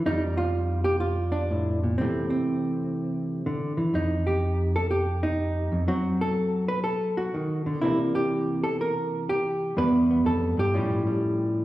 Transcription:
0, 0, Header, 1, 2, 480
1, 0, Start_track
1, 0, Tempo, 485437
1, 52, Time_signature, 4, 2, 24, 8
1, 11517, End_track
2, 0, Start_track
2, 0, Title_t, "Hollow-body jazz guitar"
2, 0, Program_c, 0, 26
2, 56, Note_on_c, 0, 41, 66
2, 61, Note_on_c, 0, 63, 100
2, 65, Note_on_c, 0, 53, 46
2, 73, Note_on_c, 0, 55, 52
2, 219, Note_off_c, 0, 63, 0
2, 370, Note_on_c, 0, 65, 88
2, 831, Note_off_c, 0, 65, 0
2, 835, Note_on_c, 0, 67, 95
2, 987, Note_off_c, 0, 67, 0
2, 991, Note_on_c, 0, 65, 81
2, 1304, Note_on_c, 0, 62, 80
2, 1490, Note_on_c, 0, 45, 51
2, 1801, Note_off_c, 0, 65, 0
2, 1810, Note_off_c, 0, 45, 0
2, 1814, Note_on_c, 0, 46, 52
2, 1954, Note_off_c, 0, 62, 0
2, 1956, Note_off_c, 0, 41, 0
2, 1958, Note_on_c, 0, 60, 81
2, 1961, Note_off_c, 0, 53, 0
2, 1974, Note_off_c, 0, 46, 0
2, 1979, Note_on_c, 0, 48, 64
2, 1985, Note_on_c, 0, 52, 47
2, 1987, Note_off_c, 0, 55, 0
2, 1991, Note_on_c, 0, 57, 47
2, 2265, Note_off_c, 0, 60, 0
2, 2277, Note_on_c, 0, 60, 66
2, 3417, Note_off_c, 0, 52, 0
2, 3424, Note_on_c, 0, 50, 55
2, 3727, Note_off_c, 0, 50, 0
2, 3731, Note_on_c, 0, 52, 54
2, 3876, Note_off_c, 0, 48, 0
2, 3885, Note_off_c, 0, 60, 0
2, 3891, Note_on_c, 0, 41, 72
2, 3892, Note_off_c, 0, 52, 0
2, 3906, Note_on_c, 0, 63, 81
2, 3936, Note_off_c, 0, 57, 0
2, 4219, Note_on_c, 0, 67, 74
2, 4695, Note_off_c, 0, 67, 0
2, 4698, Note_off_c, 0, 63, 0
2, 4704, Note_on_c, 0, 69, 90
2, 4848, Note_off_c, 0, 69, 0
2, 4852, Note_on_c, 0, 67, 84
2, 5172, Note_on_c, 0, 63, 78
2, 5642, Note_off_c, 0, 41, 0
2, 5650, Note_off_c, 0, 67, 0
2, 5654, Note_on_c, 0, 41, 54
2, 5811, Note_off_c, 0, 63, 0
2, 5811, Note_on_c, 0, 54, 66
2, 5813, Note_off_c, 0, 41, 0
2, 5815, Note_on_c, 0, 66, 89
2, 5821, Note_on_c, 0, 60, 49
2, 6144, Note_on_c, 0, 69, 84
2, 6605, Note_off_c, 0, 69, 0
2, 6609, Note_on_c, 0, 71, 94
2, 6610, Note_off_c, 0, 66, 0
2, 6756, Note_off_c, 0, 71, 0
2, 6760, Note_on_c, 0, 69, 89
2, 7094, Note_on_c, 0, 66, 85
2, 7251, Note_off_c, 0, 54, 0
2, 7259, Note_on_c, 0, 51, 54
2, 7564, Note_off_c, 0, 69, 0
2, 7572, Note_off_c, 0, 51, 0
2, 7576, Note_on_c, 0, 50, 54
2, 7716, Note_off_c, 0, 60, 0
2, 7728, Note_on_c, 0, 64, 82
2, 7732, Note_off_c, 0, 66, 0
2, 7734, Note_off_c, 0, 50, 0
2, 7742, Note_on_c, 0, 48, 68
2, 7748, Note_on_c, 0, 52, 48
2, 7758, Note_on_c, 0, 58, 46
2, 7764, Note_on_c, 0, 62, 46
2, 7886, Note_off_c, 0, 64, 0
2, 8059, Note_on_c, 0, 67, 87
2, 8534, Note_off_c, 0, 67, 0
2, 8539, Note_on_c, 0, 69, 95
2, 8695, Note_off_c, 0, 69, 0
2, 8710, Note_on_c, 0, 70, 85
2, 9180, Note_off_c, 0, 70, 0
2, 9190, Note_on_c, 0, 67, 88
2, 9637, Note_off_c, 0, 48, 0
2, 9640, Note_off_c, 0, 52, 0
2, 9645, Note_off_c, 0, 58, 0
2, 9647, Note_off_c, 0, 62, 0
2, 9658, Note_on_c, 0, 40, 71
2, 9660, Note_off_c, 0, 67, 0
2, 9663, Note_on_c, 0, 55, 50
2, 9669, Note_on_c, 0, 59, 45
2, 9672, Note_on_c, 0, 71, 91
2, 9676, Note_on_c, 0, 62, 44
2, 9979, Note_off_c, 0, 59, 0
2, 9992, Note_on_c, 0, 59, 42
2, 10131, Note_off_c, 0, 40, 0
2, 10135, Note_on_c, 0, 41, 56
2, 10140, Note_off_c, 0, 71, 0
2, 10147, Note_on_c, 0, 69, 92
2, 10448, Note_off_c, 0, 41, 0
2, 10452, Note_on_c, 0, 43, 61
2, 10458, Note_off_c, 0, 69, 0
2, 10475, Note_on_c, 0, 67, 81
2, 10597, Note_off_c, 0, 55, 0
2, 10603, Note_off_c, 0, 59, 0
2, 10605, Note_off_c, 0, 62, 0
2, 10612, Note_off_c, 0, 43, 0
2, 10618, Note_on_c, 0, 45, 69
2, 10621, Note_on_c, 0, 53, 52
2, 10632, Note_on_c, 0, 55, 48
2, 10637, Note_on_c, 0, 61, 50
2, 10930, Note_off_c, 0, 55, 0
2, 10942, Note_on_c, 0, 55, 45
2, 11517, Note_off_c, 0, 45, 0
2, 11517, Note_off_c, 0, 53, 0
2, 11517, Note_off_c, 0, 55, 0
2, 11517, Note_off_c, 0, 61, 0
2, 11517, Note_off_c, 0, 67, 0
2, 11517, End_track
0, 0, End_of_file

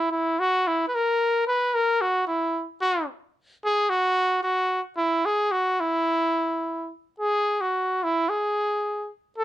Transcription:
0, 0, Header, 1, 2, 480
1, 0, Start_track
1, 0, Key_signature, 4, "major"
1, 0, Tempo, 539084
1, 587, Time_signature, 4, 2, 24, 8
1, 4903, Tempo, 548948
1, 8346, End_track
2, 0, Start_track
2, 0, Title_t, "Trumpet"
2, 0, Program_c, 0, 56
2, 0, Note_on_c, 0, 64, 78
2, 94, Note_off_c, 0, 64, 0
2, 102, Note_on_c, 0, 64, 80
2, 353, Note_on_c, 0, 66, 93
2, 367, Note_off_c, 0, 64, 0
2, 601, Note_on_c, 0, 64, 80
2, 615, Note_off_c, 0, 66, 0
2, 778, Note_off_c, 0, 64, 0
2, 786, Note_on_c, 0, 71, 72
2, 846, Note_on_c, 0, 70, 95
2, 859, Note_off_c, 0, 71, 0
2, 1310, Note_off_c, 0, 70, 0
2, 1315, Note_on_c, 0, 71, 89
2, 1554, Note_on_c, 0, 70, 91
2, 1568, Note_off_c, 0, 71, 0
2, 1793, Note_on_c, 0, 66, 89
2, 1806, Note_off_c, 0, 70, 0
2, 2019, Note_off_c, 0, 66, 0
2, 2025, Note_on_c, 0, 64, 72
2, 2357, Note_off_c, 0, 64, 0
2, 2502, Note_on_c, 0, 66, 84
2, 2728, Note_off_c, 0, 66, 0
2, 3251, Note_on_c, 0, 68, 90
2, 3469, Note_on_c, 0, 66, 99
2, 3483, Note_off_c, 0, 68, 0
2, 3940, Note_off_c, 0, 66, 0
2, 3946, Note_on_c, 0, 66, 78
2, 4282, Note_off_c, 0, 66, 0
2, 4428, Note_on_c, 0, 64, 85
2, 4680, Note_on_c, 0, 68, 84
2, 4693, Note_off_c, 0, 64, 0
2, 4910, Note_on_c, 0, 66, 78
2, 4923, Note_off_c, 0, 68, 0
2, 5162, Note_on_c, 0, 64, 85
2, 5175, Note_off_c, 0, 66, 0
2, 6132, Note_off_c, 0, 64, 0
2, 6377, Note_on_c, 0, 68, 86
2, 6743, Note_on_c, 0, 66, 70
2, 6756, Note_off_c, 0, 68, 0
2, 7115, Note_on_c, 0, 64, 81
2, 7128, Note_off_c, 0, 66, 0
2, 7340, Note_on_c, 0, 68, 74
2, 7353, Note_off_c, 0, 64, 0
2, 8048, Note_off_c, 0, 68, 0
2, 8286, Note_on_c, 0, 69, 96
2, 8346, Note_off_c, 0, 69, 0
2, 8346, End_track
0, 0, End_of_file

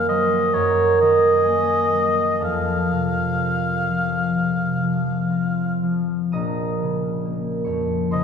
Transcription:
0, 0, Header, 1, 3, 480
1, 0, Start_track
1, 0, Tempo, 913242
1, 762, Tempo, 974026
1, 1237, Time_signature, 4, 2, 24, 8
1, 1722, Tempo, 941915
1, 2682, Tempo, 1034483
1, 3162, Tempo, 900901
1, 4187, End_track
2, 0, Start_track
2, 0, Title_t, "Oboe"
2, 0, Program_c, 0, 68
2, 45, Note_on_c, 0, 75, 64
2, 282, Note_on_c, 0, 73, 55
2, 290, Note_off_c, 0, 75, 0
2, 521, Note_off_c, 0, 73, 0
2, 531, Note_on_c, 0, 75, 67
2, 1228, Note_off_c, 0, 75, 0
2, 1250, Note_on_c, 0, 77, 61
2, 2909, Note_off_c, 0, 77, 0
2, 4127, Note_on_c, 0, 75, 53
2, 4187, Note_off_c, 0, 75, 0
2, 4187, End_track
3, 0, Start_track
3, 0, Title_t, "Harp"
3, 0, Program_c, 1, 46
3, 0, Note_on_c, 1, 42, 59
3, 0, Note_on_c, 1, 51, 45
3, 0, Note_on_c, 1, 58, 48
3, 0, Note_on_c, 1, 73, 68
3, 0, Note_on_c, 1, 82, 71
3, 0, Note_on_c, 1, 85, 87
3, 46, Note_on_c, 1, 84, 71
3, 54, Note_on_c, 1, 72, 52
3, 56, Note_on_c, 1, 54, 46
3, 275, Note_off_c, 1, 82, 0
3, 282, Note_on_c, 1, 82, 78
3, 283, Note_off_c, 1, 42, 0
3, 285, Note_on_c, 1, 78, 58
3, 287, Note_on_c, 1, 70, 64
3, 290, Note_on_c, 1, 42, 48
3, 452, Note_off_c, 1, 84, 0
3, 528, Note_off_c, 1, 51, 0
3, 534, Note_on_c, 1, 51, 42
3, 541, Note_off_c, 1, 85, 0
3, 754, Note_on_c, 1, 80, 63
3, 759, Note_off_c, 1, 58, 0
3, 763, Note_on_c, 1, 68, 46
3, 765, Note_on_c, 1, 58, 39
3, 987, Note_off_c, 1, 54, 0
3, 993, Note_on_c, 1, 54, 37
3, 1228, Note_on_c, 1, 81, 54
3, 1235, Note_on_c, 1, 77, 43
3, 1236, Note_on_c, 1, 69, 46
3, 1238, Note_on_c, 1, 41, 43
3, 1255, Note_off_c, 1, 54, 0
3, 1256, Note_off_c, 1, 82, 0
3, 1257, Note_off_c, 1, 68, 0
3, 1258, Note_off_c, 1, 58, 0
3, 1258, Note_off_c, 1, 73, 0
3, 1258, Note_off_c, 1, 78, 0
3, 1259, Note_off_c, 1, 70, 0
3, 1260, Note_off_c, 1, 42, 0
3, 1263, Note_off_c, 1, 51, 0
3, 1485, Note_on_c, 1, 48, 34
3, 1574, Note_off_c, 1, 80, 0
3, 1725, Note_on_c, 1, 60, 36
3, 1976, Note_on_c, 1, 53, 33
3, 2030, Note_off_c, 1, 72, 0
3, 2207, Note_off_c, 1, 48, 0
3, 2213, Note_on_c, 1, 48, 35
3, 2442, Note_off_c, 1, 53, 0
3, 2448, Note_on_c, 1, 53, 34
3, 2683, Note_off_c, 1, 60, 0
3, 2688, Note_on_c, 1, 60, 34
3, 2930, Note_off_c, 1, 53, 0
3, 2936, Note_on_c, 1, 53, 36
3, 3153, Note_off_c, 1, 81, 0
3, 3159, Note_off_c, 1, 69, 0
3, 3159, Note_off_c, 1, 77, 0
3, 3162, Note_off_c, 1, 41, 0
3, 3164, Note_on_c, 1, 87, 76
3, 3169, Note_on_c, 1, 82, 61
3, 3173, Note_on_c, 1, 34, 42
3, 3173, Note_on_c, 1, 75, 56
3, 3187, Note_off_c, 1, 60, 0
3, 3190, Note_off_c, 1, 48, 0
3, 3424, Note_on_c, 1, 49, 36
3, 3658, Note_on_c, 1, 58, 38
3, 3870, Note_on_c, 1, 85, 59
3, 3876, Note_on_c, 1, 73, 43
3, 3879, Note_on_c, 1, 41, 35
3, 4117, Note_on_c, 1, 84, 73
3, 4118, Note_off_c, 1, 49, 0
3, 4121, Note_on_c, 1, 72, 57
3, 4125, Note_on_c, 1, 49, 39
3, 4187, Note_off_c, 1, 34, 0
3, 4187, Note_off_c, 1, 41, 0
3, 4187, Note_off_c, 1, 49, 0
3, 4187, Note_off_c, 1, 53, 0
3, 4187, Note_off_c, 1, 58, 0
3, 4187, Note_off_c, 1, 72, 0
3, 4187, Note_off_c, 1, 73, 0
3, 4187, Note_off_c, 1, 75, 0
3, 4187, Note_off_c, 1, 82, 0
3, 4187, Note_off_c, 1, 84, 0
3, 4187, Note_off_c, 1, 85, 0
3, 4187, Note_off_c, 1, 87, 0
3, 4187, End_track
0, 0, End_of_file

